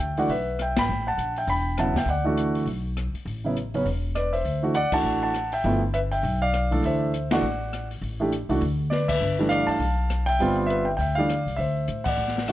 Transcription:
Already playing: grand piano E5 G5
0.00 upright bass D2
0.17 grand piano E3 A3 D4 F#4 D5 F#5, open hi-hat
0.29 upright bass B1, grand piano B4 E5, open hi-hat
0.59 grand piano E5 G5, cross-stick, closed hi-hat
0.77 upright bass G#1, grand piano G5 B5, snare, ride
0.89 upright bass A1
1.07 grand piano F#5 A5
1.17 upright bass A#1, closed hi-hat
1.36 grand piano E5 G5, open hi-hat
1.47 upright bass E1, grand piano G5 B5, open hi-hat
1.78 grand piano C#3 F#3 B3 E4 F#5 A5, cross-stick, closed hi-hat
1.94 upright bass D#2, grand piano E5 G5, snare, open hi-hat
2.06 upright bass D2, grand piano F#5, open hi-hat
2.10 grand piano D5
2.24 grand piano E3 A3 D4 F#4
2.37 closed hi-hat
2.55 open hi-hat
2.65 upright bass B1, open hi-hat
2.97 cross-stick, closed hi-hat
3.14 muted upright bass stroke, open hi-hat
3.25 upright bass A1, open hi-hat
3.44 grand piano C#3 F#3 B3 E4
3.57 closed hi-hat
3.74 grand piano C#3 F#3 B3 C#4, open hi-hat
3.85 upright bass E1, open hi-hat
4.15 grand piano B4 D5, cross-stick, closed hi-hat
4.33 grand piano C5 E5, open hi-hat
4.44 upright bass D2, open hi-hat
4.63 grand piano E3 A3 D4 F#4
4.74 grand piano D5 F#5, closed hi-hat
4.92 grand piano E3 A3 D4 F#4 F#5 A5, muted upright bass stroke, kick, crash
5.03 upright bass A1
5.23 grand piano F#5 A5
5.34 cross-stick, closed hi-hat
5.52 grand piano E5 G5, open hi-hat
5.64 upright bass G1, grand piano F3 A3 B3 E4, open hi-hat
5.94 grand piano B4 E5, closed hi-hat
6.12 grand piano E5 G5, open hi-hat
6.23 upright bass B1, open hi-hat
6.42 grand piano D5 F5
6.54 cross-stick, closed hi-hat
6.71 grand piano E3 A3 D4 A4, kick, open hi-hat
6.82 upright bass D2, grand piano C5 E5, open hi-hat
7.14 closed hi-hat
7.31 grand piano E3 A3 D4 F#4 D5 F#5, snare, ride
7.41 upright bass A1
7.73 cross-stick, closed hi-hat
7.91 open hi-hat
8.01 upright bass A1, open hi-hat
8.20 grand piano E3 A3 D4 G4
8.32 closed hi-hat
8.49 upright bass C2, grand piano E3 A3 D4 F#4, open hi-hat
8.61 upright bass D2, open hi-hat
8.90 grand piano B4 D5, snare
9.08 grand piano B4 E5, kick, crash
9.20 upright bass G1
9.39 grand piano E3 G3 A3 D4
9.49 grand piano D5 F5, closed hi-hat
9.67 grand piano F5 A5, muted upright bass stroke, open hi-hat
9.79 upright bass B1, open hi-hat
10.10 cross-stick, closed hi-hat
10.26 grand piano E5 G5, open hi-hat
10.39 upright bass G1, grand piano G3 B3 C4 F4, open hi-hat
10.66 grand piano B4 E5, closed hi-hat
10.85 grand piano E5 G5
10.97 upright bass D2, grand piano E5 G5, open hi-hat
11.15 grand piano E3 G3 A3 D5 F5
11.19 grand piano D4
11.30 cross-stick, closed hi-hat
11.46 upright bass C2, open hi-hat
11.56 upright bass D2, grand piano C5 E5, open hi-hat
11.88 upright bass A2, closed hi-hat
12.04 grand piano D5 F#5, kick, crash
12.17 upright bass A1
12.28 snare
12.38 snare
12.48 grand piano E3 A3 D4, cross-stick, closed hi-hat

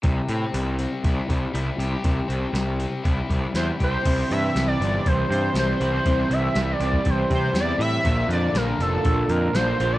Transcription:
0.03 picked electric bass C2, overdriven electric guitar C3, kick, open hi-hat
0.28 picked electric bass A2, overdriven electric guitar C4, open hi-hat
0.54 picked electric bass C2, overdriven electric guitar G3, open hi-hat
0.79 overdriven electric guitar C4, open hi-hat
1.04 picked electric bass C2, overdriven electric guitar E4, kick, open hi-hat
1.29 picked electric bass C2, overdriven electric guitar G3, kick, open hi-hat
1.54 picked electric bass C2, overdriven electric guitar E4, open hi-hat
1.78 picked electric bass C2, overdriven electric guitar G4, open hi-hat
2.04 picked electric bass C2, overdriven electric guitar C3, kick, open hi-hat
2.28 picked electric bass C2, overdriven electric guitar C4, open hi-hat
2.53 picked electric bass C2, overdriven electric guitar G3, snare, open hi-hat
2.79 overdriven electric guitar C4, open hi-hat
3.04 picked electric bass C2, overdriven electric guitar E4, kick, open hi-hat
3.29 picked electric bass C2, overdriven electric guitar G3, kick, open hi-hat
3.54 picked electric bass E2, overdriven electric guitar E4, analog synth lead C5 G6, snare, open hi-hat
3.80 picked electric bass C2, overdriven electric guitar G4, analog synth lead C5 G6, kick, open hi-hat
4.02 picked electric bass C2, overdriven electric guitar C3 G3 C4 E4, kick, open hi-hat, crash
4.30 picked electric bass G2, clean electric guitar E3, analog synth lead E5 B6, open hi-hat
4.55 picked electric bass C2, overdriven electric guitar C3 G3 C4 E4, snare, open hi-hat
4.68 analog synth lead D5 A6
4.79 picked electric bass G1, overdriven electric guitar G3 C4 E4, open hi-hat
5.06 picked electric bass C2, clean electric guitar E3, analog synth lead C5 G6, kick, open hi-hat
5.30 picked electric bass G2, clean electric guitar C4, analog synth lead C5 G6, open hi-hat
5.53 picked electric bass C2, overdriven electric guitar C3 G3 C4 E4, snare, open hi-hat
5.59 analog synth lead C5 G6
5.80 picked electric bass C2, overdriven electric guitar G3 C4 E4, analog synth lead C5 G6, open hi-hat
6.04 picked electric bass C2, overdriven electric guitar C3 G3 C4 E4, kick, open hi-hat
6.30 picked electric bass C2, clean electric guitar E3, analog synth lead E5 B6, open hi-hat
6.55 picked electric bass C2, overdriven electric guitar C3 G3 C4 E4, snare, open hi-hat
6.72 analog synth lead D5 A6
6.79 picked electric bass C2, overdriven electric guitar G3 C4 E4, open hi-hat
6.93 kick
7.05 picked electric bass C2, clean electric guitar E3, kick, open hi-hat
7.10 analog synth lead C5 G6
7.30 picked electric bass C3, clean electric guitar C4, kick, open hi-hat
7.35 analog synth lead C5 G6
7.53 picked electric bass E2, overdriven electric guitar C3 G3 C4 E4, snare, open hi-hat
7.60 analog synth lead D5 A6
7.78 picked electric bass A2, overdriven electric guitar G3 C4 E4, analog synth lead E5 B6, open hi-hat
8.03 picked electric bass A#1, overdriven electric guitar A#2 D3 F3 A#3 F4, kick, open hi-hat
8.07 clean electric guitar A#2
8.28 picked electric bass F2, clean electric guitar D3, analog synth lead D5 A6, open hi-hat
8.53 picked electric bass A#1, overdriven electric guitar A#2 D3 F3 A#3, analog synth lead A#4 F6, snare, open hi-hat
8.58 overdriven electric guitar F4
8.78 picked electric bass F1, overdriven electric guitar F3 A#3 F4, clean electric guitar D4, analog synth lead A4 E6, open hi-hat
9.05 picked electric bass A#1, clean electric guitar D3, kick, open hi-hat
9.29 picked electric bass F2, clean electric guitar D4, analog synth lead A#4 F6, open hi-hat
9.53 picked electric bass A#1, overdriven electric guitar D3 F3 A#3 F4, analog synth lead C5 G6, snare, open hi-hat
9.78 picked electric bass A#1, overdriven electric guitar F3 A#3 F4, analog synth lead C5 G6, open hi-hat
9.93 analog synth lead D5 A6

